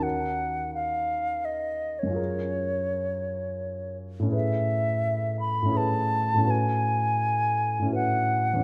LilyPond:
<<
  \new Staff \with { instrumentName = "Flute" } { \time 3/4 \key fis \phrygian \tempo 4 = 84 fis''4 f''4 dis''8. cis''16~ | cis''2~ cis''8 r8 | e''4. b''8 a''4 | gis''2 fis''4 | }
  \new Staff \with { instrumentName = "Grand piano" } { \time 3/4 \key fis \phrygian <dis, cis' dis' fis' ais'>2. | <fis, cis' eis' gis' ais'>2. | <a, cis' e' gis' b'>2 <a, cis' e' gis' b'>4 | <a, cis' e' fis' b'>2 <a, cis' e' fis' b'>4 | }
>>